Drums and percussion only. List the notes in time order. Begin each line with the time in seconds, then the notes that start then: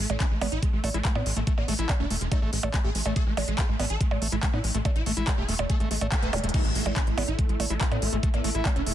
0.10 closed hi-hat, percussion blips
0.20 kick, clap, closed hi-hat
0.41 open hi-hat, percussion blips
0.52 closed hi-hat
0.63 kick, closed hi-hat
0.84 open hi-hat, percussion blips
0.94 closed hi-hat
1.05 kick, clap, closed hi-hat
1.15 percussion blips
1.26 open hi-hat
1.37 closed hi-hat
1.47 kick, closed hi-hat
1.58 percussion blips
1.68 open hi-hat
1.79 closed hi-hat
1.89 kick, clap, closed hi-hat, percussion blips
2.10 open hi-hat
2.21 closed hi-hat
2.32 kick, closed hi-hat, percussion blips
2.53 open hi-hat
2.63 percussion blips
2.74 kick, clap, closed hi-hat
2.95 open hi-hat
3.06 closed hi-hat, percussion blips
3.16 kick, closed hi-hat
3.37 open hi-hat, percussion blips
3.48 closed hi-hat
3.58 kick, clap, closed hi-hat
3.80 open hi-hat, percussion blips
3.90 closed hi-hat
4.01 kick, closed hi-hat
4.11 percussion blips
4.22 open hi-hat
4.32 closed hi-hat
4.43 kick, clap, closed hi-hat
4.53 percussion blips
4.64 open hi-hat
4.75 closed hi-hat
4.85 kick, closed hi-hat, percussion blips
4.96 closed hi-hat
5.06 open hi-hat
5.17 closed hi-hat
5.27 kick, clap, closed hi-hat, percussion blips
5.49 open hi-hat
5.59 closed hi-hat, percussion blips
5.70 kick, closed hi-hat
5.80 closed hi-hat
5.91 open hi-hat
6.01 closed hi-hat, percussion blips
6.12 kick, clap, closed hi-hat
6.23 closed hi-hat
6.33 closed hi-hat, open hi-hat, percussion blips
6.38 closed hi-hat
6.44 closed hi-hat
6.49 closed hi-hat
6.54 kick, closed hi-hat, crash
6.65 closed hi-hat
6.75 open hi-hat
6.86 closed hi-hat, percussion blips
6.96 kick, clap, closed hi-hat
7.07 closed hi-hat
7.18 open hi-hat, percussion blips
7.28 closed hi-hat
7.39 kick, closed hi-hat
7.49 closed hi-hat
7.60 open hi-hat, percussion blips
7.70 closed hi-hat
7.81 kick, clap, closed hi-hat
7.92 closed hi-hat, percussion blips
8.02 open hi-hat
8.13 closed hi-hat
8.23 kick, closed hi-hat
8.34 closed hi-hat, percussion blips
8.44 open hi-hat
8.55 closed hi-hat
8.65 kick, clap, closed hi-hat, percussion blips
8.76 closed hi-hat
8.87 open hi-hat